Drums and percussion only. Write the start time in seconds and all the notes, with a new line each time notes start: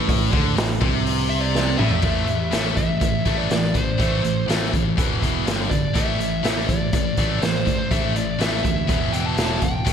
0.09 kick, open hi-hat
0.33 kick
0.57 snare, open hi-hat
0.82 kick
1.06 open hi-hat
1.55 snare
1.79 mid tom
1.91 floor tom
2.02 kick, crash
2.28 closed hi-hat
2.52 snare, closed hi-hat
2.77 kick, closed hi-hat
3.01 kick, closed hi-hat
3.25 kick, closed hi-hat
3.50 snare, closed hi-hat
3.75 kick, closed hi-hat
4.00 kick, closed hi-hat
4.24 closed hi-hat
4.50 snare, closed hi-hat
4.74 kick, closed hi-hat
4.98 kick, closed hi-hat
5.22 kick, closed hi-hat
5.47 snare, closed hi-hat
5.71 kick, closed hi-hat
5.95 kick, closed hi-hat
6.20 closed hi-hat
6.44 snare, closed hi-hat
6.69 kick, closed hi-hat
6.93 kick, closed hi-hat
7.17 kick, closed hi-hat
7.42 snare, closed hi-hat
7.67 kick, closed hi-hat
7.91 kick, closed hi-hat
8.16 closed hi-hat
8.40 snare, closed hi-hat
8.65 kick, closed hi-hat
8.89 kick, closed hi-hat
9.13 closed hi-hat
9.38 snare, closed hi-hat
9.62 kick, closed hi-hat
9.86 kick, closed hi-hat